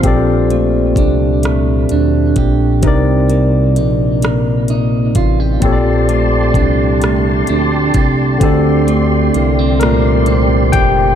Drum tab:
HH |xxxxxx|xxxxxx|xxxxxx|xxxxxx|
SD |---r--|---r--|---r--|---r--|
BD |o-o--o|o----o|o-o--o|o----o|